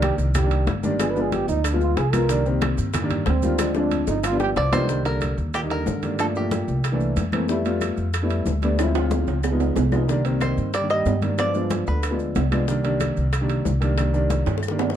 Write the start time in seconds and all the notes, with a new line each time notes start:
Already playing: C2 D#3 G3 A#3 D4
0.02 G4, high bongo, high conga, high timbale, claves, maracas
0.18 C2 D#4, high bongo, high conga, maracas
0.35 G4, high bongo, high conga, low conga, high timbale, claves, maracas
0.43 D#3 G3 A#3 D4
0.51 high bongo, high conga, high timbale, maracas
0.67 G1, high bongo, low bongo, high conga, high timbale, maracas
0.83 D#3 G3 A#3 D4, high bongo, high conga, maracas
0.99 F3 G#3 B3 D4 G#4, high bongo, high conga, high timbale, claves, maracas
1.10 B4
1.16 F3 G#3 B3 D4, high conga, maracas
1.21 G#4
1.32 G4, high bongo, high conga, high timbale, maracas
1.48 D2 D#4, high bongo, high conga, maracas
1.64 D4, high bongo, high conga, high timbale, claves, maracas
1.73 F3 G#3 B3 F4
1.81 F4, high bongo, high conga, maracas
1.97 C2 G#4, high bongo, low bongo, high conga, high timbale, maracas
2.13 F3 G#3 B3 F4 A#4, high bongo, high conga, high timbale, claves, maracas
2.29 D#3 G3 A#3 D4, high bongo, high timbale, maracas
2.45 D#3 G3 A#3 C4, high conga, maracas
2.61 high bongo, high conga, high timbale, claves, maracas
2.77 G2, high bongo, high conga, maracas
2.94 high bongo, high conga, low conga, high timbale, claves, maracas
3.02 D#3 G3 A#3 D4
3.10 high bongo, high conga, low conga, high timbale, maracas
3.26 D2 C4, high bongo, low bongo, high conga, high timbale, maracas
3.42 D#3 G3 A#3 F4, high bongo, high conga, maracas
3.59 F3 G#3 C4 D4, high bongo, high conga, high timbale, claves, maracas
3.75 F3 G#3 C4 D4, high bongo, high conga, maracas
3.91 high conga, high timbale, maracas
4.07 G1 D#4, high bongo, high conga, maracas
4.23 F4, low bongo, high conga, high timbale, claves, maracas
4.31 F3 G3 B3 D4
4.40 G4, low bongo, high conga, maracas
4.56 C2 F3 D5, low bongo, high conga, high timbale, maracas
4.72 D#3 F3 G3 B3 D4 C5, low bongo, high conga, high timbale, claves, maracas
4.88 D#3 G3 A#3 D4, high bongo, high conga, maracas
5.05 D3 G3 A#3 D4 A#4, high bongo, high conga, high timbale, maracas
5.21 high bongo, high conga, high timbale, claves, maracas
5.38 D#2, high conga, maracas
5.54 A#2 G4, high bongo, high conga, high timbale, claves, maracas
5.62 D#3 G3 A#3 D#4
5.70 D3 A#4, high bongo, high conga, high timbale, maracas
5.86 G2, high bongo, low bongo, high conga, maracas
6.02 D#3 G3 A#3 D4, high bongo, high conga, high timbale, maracas
6.19 D3 F3 A3 A#3 D4 A4, high bongo, high conga, high timbale, claves, maracas
6.35 A#2 F3 A3 A#3 D4 G4, high bongo, high conga, maracas
6.51 high bongo, high conga, high timbale, maracas
6.68 C2, high conga, maracas
6.84 high bongo, high conga, high timbale, claves, maracas
6.92 E3 A3 A#3 D4
7.00 high bongo, high conga, maracas
7.16 F2, high bongo, low bongo, high conga, high timbale, maracas
7.32 E3 A3 A#3 C4, high bongo, high conga, high timbale, claves, maracas
7.48 G3 A3 B3 E4, high bongo, high conga, maracas
7.65 G3 A3 B3 F4, high bongo, high conga, high timbale, maracas
7.81 high bongo, high conga, high timbale, claves, maracas
7.97 F2, high conga, maracas
8.14 high bongo, high conga, high timbale, claves, maracas
8.22 G3 A3 B3 E4
8.30 high bongo, high conga, high timbale, maracas
8.46 D2, high bongo, low bongo, high conga, maracas
8.62 G3 A3 B3 D4, high bongo, high conga, high timbale, maracas
8.79 F3 G#3 C4 E4, high bongo, high timbale, claves, maracas
8.95 F3 G#3 C4 F4, high bongo, high conga, high timbale, maracas
9.11 high bongo, high conga, low timbale, maracas
9.27 C#2, high conga, high timbale, maracas
9.43 high bongo, high conga, low timbale, claves, maracas
9.51 F3 G#3 B3 D#4
9.60 high bongo, high conga, low timbale, maracas
9.76 C2, high bongo, low bongo, high conga, low timbale, maracas
9.92 F3 G#3 B3 D#4, high bongo, high conga, low timbale, claves, maracas
10.08 D#3 G3 A#3 D4, high bongo, maracas
10.24 D#3 G3 A#3 C4, high bongo, high conga, high timbale, maracas
10.41 D#3 C5, high bongo, high conga, high timbale, claves, maracas
10.57 G2, high conga, maracas
10.73 G3 D5, high bongo, high conga, high timbale, claves, maracas
10.81 D#3 G3 A#3 D4
10.89 G3 D#5, high bongo, high conga, high timbale, maracas
11.06 G2, high bongo, low bongo, high conga, low timbale, maracas
11.22 D#3 G3 A#3 D4, high bongo, high conga, high timbale, maracas
11.38 F3 G#3 B3 D4 D5, high bongo, high conga, high timbale, claves, maracas
11.54 F3 G#3 B3 D4, high bongo, high conga, maracas
11.70 high bongo, high conga, high timbale, maracas
11.87 D2 D3 B4, high conga, maracas
12.03 high bongo, high conga, high timbale, claves, maracas
12.11 F3 G#3 B3 D4
12.19 high bongo, high conga, maracas
12.35 C2, high bongo, low bongo, high conga, high timbale, low timbale, maracas
12.51 F3 G#3 B3 D4, high bongo, high conga, high timbale, claves, maracas
12.67 D#3 G3 A#3 D4, high bongo, high conga, maracas
12.83 D#3 G3 A#3 D4, high bongo, high conga, high timbale, maracas
13.00 high bongo, high conga, high timbale, claves, maracas
13.17 C2, high conga, maracas
13.33 high bongo, high conga, high timbale, claves, maracas
13.41 D#3 G3 A#3 D4
13.49 high bongo, high conga, high timbale, maracas
13.65 C2, high bongo, low bongo, high conga, maracas
13.80 D#3 G3 A#3 D4, high bongo, high timbale, maracas
13.97 D#3 G3 A#3 D4, high bongo, high timbale, claves, maracas
14.13 D#3 G3 A#3 D4, high bongo, high conga, maracas
14.30 high bongo, high conga, high timbale, maracas
14.46 G2, high bongo, high conga, high timbale, maracas
14.58 high bongo
14.63 high conga, claves, maracas
14.68 D#3 G3 A#3 D4, high bongo
14.79 low bongo, high conga, low timbale, maracas
14.90 low bongo